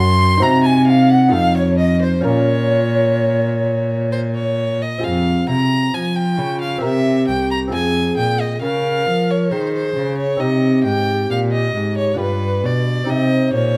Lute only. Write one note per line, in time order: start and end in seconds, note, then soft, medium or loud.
0.00 0.38 F#2 medium
0.00 0.37 C#4 medium
0.00 0.37 F#4 medium
0.00 0.38 A#4 medium
0.37 1.27 D#4 medium
0.37 1.28 F#4 medium
0.37 1.29 C5 medium
0.42 1.29 C3 medium
1.28 2.20 D#4 medium
1.28 2.21 F4 medium
1.28 2.22 A4 medium
1.33 2.22 F2 medium
2.21 4.79 A#2 medium
2.21 4.97 C#4 medium
2.21 4.98 F4 medium
2.21 4.99 A#4 medium
4.98 6.32 C4 soft
4.98 6.77 F4 medium
4.98 6.78 G#4 medium
5.03 5.45 F2 medium
5.48 5.90 C3 medium
5.94 6.35 F3 medium
6.38 6.79 C#3 medium
6.78 7.66 C4 medium
6.78 7.68 G4 medium
6.78 7.69 A#4 medium
6.83 7.24 C3 medium
7.67 8.14 C4 soft
7.67 10.35 F4 soft
7.67 10.36 G#4 medium
7.72 8.13 F2 medium
8.17 8.58 A#2 medium
8.62 9.03 C#3 medium
9.06 9.47 F3 medium
9.51 9.92 D#3 medium
9.96 10.37 C#3 soft
10.37 12.13 C4 soft
10.37 12.14 D#4 soft
10.37 12.15 G4 soft
10.41 10.82 C3 medium
10.86 11.26 G#2 medium
11.30 11.71 A#2 medium
11.75 12.16 G#2 medium
12.14 13.03 D4 soft
12.14 13.04 F4 medium
12.14 13.05 G4 medium
12.18 12.59 G2 medium
12.64 13.04 B2 medium
13.04 13.77 C4 soft
13.04 13.77 D#4 soft
13.04 13.77 G4 soft
13.09 13.49 C3 medium
13.53 13.77 A#2 medium